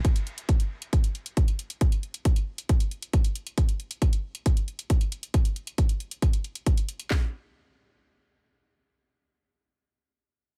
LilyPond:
\new DrumStaff \with { instrumentName = "Drums" } \drummode { \time 4/4 \tempo 4 = 136 <hh bd>16 hh16 hh16 hh16 <hh bd>16 hh8 hh16 <hh bd>16 hh16 hh16 hh16 <hh bd>16 hh16 hh16 hh16 | <hh bd>16 hh16 hh16 hh16 <hh bd>16 hh8 hh16 <hh bd>16 hh16 hh16 hh16 <hh bd>16 hh16 hh16 hh16 | <hh bd>16 hh16 hh16 hh16 <hh bd>16 hh8 hh16 <hh bd>16 hh16 hh16 hh16 <hh bd>16 hh16 hh16 hh16 | <hh bd>16 hh16 hh16 hh16 <hh bd>16 hh16 hh16 hh16 <hh bd>16 hh16 hh16 hh16 <hh bd>16 hh16 hh16 hh16 |
<hc bd sn>4 r4 r4 r4 | r4 r4 r4 r4 | }